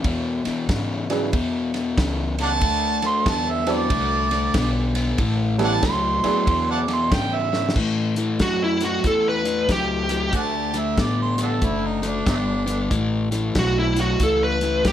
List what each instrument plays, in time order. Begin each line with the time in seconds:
0.04 upright bass E2, overdriven electric guitar E2 B2, kick, ride
0.45 overdriven electric guitar E2 B2, muted upright bass stroke, snare, ride
0.69 overdriven electric guitar E2 C#3, upright bass G#2, kick, snare, ride
1.10 overdriven electric guitar E2 C#3, upright piano F#3 B3 D4 E4 G#4, snare, ride
1.33 upright bass E2, overdriven electric guitar E2 B2, kick, ride
1.74 overdriven electric guitar E2 B2, snare, ride
1.97 upright bass C#2, overdriven electric guitar E2 C#3, kick, snare, ride
2.39 overdriven electric guitar E2 C#3, harmonica D5 F#5 A5, snare, ride
2.61 upright bass D2, overdriven electric guitar D3 A3, kick, ride
3.02 overdriven electric guitar D3 A3, harmonica C6, snare, ride
3.26 upright bass E2, overdriven electric guitar D3 B3, harmonica A5, kick, snare, ride
3.50 harmonica E5
3.67 overdriven electric guitar D3 B3, upright piano F#3 C4 D4 E4 A4, snare, ride
3.71 harmonica D5
3.90 upright bass C2, overdriven electric guitar D3 A3, kick, ride
4.31 overdriven electric guitar D3 A3, snare, ride
4.54 upright bass B1, overdriven electric guitar D3 B3, kick, snare, ride
4.95 overdriven electric guitar D3 B3, snare, ride
5.18 upright bass A1, overdriven electric guitar A2 E3, kick, ride
5.58 overdriven electric guitar A2 E3, upright piano G3 B3 C#4 E4 A4, snare, ride
5.64 harmonica D5 F#5 A5
5.83 upright bass C#2, overdriven electric guitar A2 F#3, harmonica C6, kick, snare, ride
6.23 overdriven electric guitar A2 F#3, upright piano F#3 B3 D4 E4 G#4, muted upright bass stroke, snare, ride
6.47 overdriven electric guitar E2 B2, upright bass E2, kick, ride
6.71 harmonica F#5 A5 D6
6.88 overdriven electric guitar E2 B2, snare, ride
6.93 harmonica C6
7.12 overdriven electric guitar E2 C#3, upright bass G#2, harmonica G5, kick, snare, ride
7.35 harmonica E5
7.52 overdriven electric guitar E2 C#3, snare
7.69 snare
7.76 upright bass A2, overdriven electric guitar A2 E3, kick, crash
8.16 overdriven electric guitar A2 E3, snare, closed hi-hat
8.39 upright bass F#2, overdriven electric guitar A2 F#3, lead electric guitar F#4, kick, snare, closed hi-hat
8.64 lead electric guitar E4
8.81 overdriven electric guitar A2 F#3, snare, closed hi-hat
8.85 lead electric guitar F#4
9.04 upright bass E2, overdriven electric guitar A2 E3, lead electric guitar A4, kick, closed hi-hat
9.29 lead electric guitar B4
9.45 overdriven electric guitar A2 E3, snare, closed hi-hat
9.69 upright bass C#2, overdriven electric guitar A2 F#3, lead electric guitar G4, kick, snare, closed hi-hat
10.09 overdriven electric guitar A2 F#3, snare, closed hi-hat
10.33 upright bass D2, overdriven electric guitar D3 A3, harmonica D5 F#5 A5, kick, closed hi-hat
10.74 overdriven electric guitar D3 A3, snare, closed hi-hat
10.79 harmonica E5
10.98 upright bass A1, overdriven electric guitar D3 B3, harmonica D5, kick, snare, closed hi-hat
11.22 harmonica C5
11.38 overdriven electric guitar D3 B3, snare, closed hi-hat
11.42 harmonica D4 F#4 A4
11.62 upright bass F#1, overdriven electric guitar D3 A3, harmonica E4, kick, closed hi-hat
11.86 harmonica D#4
12.02 overdriven electric guitar D3 A3, snare, closed hi-hat
12.08 harmonica D4
12.26 upright bass G1, overdriven electric guitar D3 B3, harmonica F#3 A3 D4, kick, snare, closed hi-hat
12.66 overdriven electric guitar D3 B3, snare, closed hi-hat
12.90 upright bass A1, overdriven electric guitar A2 E3, kick, snare, closed hi-hat
13.31 overdriven electric guitar A2 E3, snare, closed hi-hat
13.55 upright bass B1, overdriven electric guitar A2 F#3, lead electric guitar F#4, kick, snare, closed hi-hat
13.79 lead electric guitar E4
13.96 overdriven electric guitar A2 F#3, snare, closed hi-hat
14.01 lead electric guitar F#4
14.20 upright bass C#2, overdriven electric guitar A2 E3, lead electric guitar A4, kick, closed hi-hat
14.44 lead electric guitar B4
14.61 overdriven electric guitar A2 E3, snare, closed hi-hat
14.85 upright bass D2, overdriven electric guitar A2 F#3, lead electric guitar G4, kick, snare, closed hi-hat